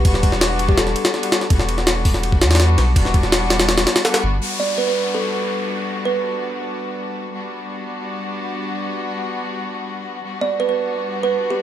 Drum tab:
RD |x---x---x---x---x---x-x---x-x---|x---x---x-------x---x-xxx---x---|x---x---x---x-x-x-x-x-x-x-x-----|--------------------------------|
HH |--------------------------------|------------o-------------------|--------------------------------|--------------------------------|
SD |--o---o-o-------o-o---o-o---o-o-|--o---o-o-----o-----o-ooo---o---|--o---o-o---o-o-o-o-o-o-o-o-----|--------------------------------|
BD |o---o---------o-----------------|o-----------o-----o-------------|o---o---------------------------|--------------------------------|

RD |--------------------------------|--------------------------------|--------------------------------|--------------------------------|
HH |--------------------------------|--------------------------------|--------------------------------|--------------------------------|
SD |--------------------------------|--------------------------------|--------------------------------|--------------------------------|
BD |--------------------------------|--------------------------------|--------------------------------|--------------------------------|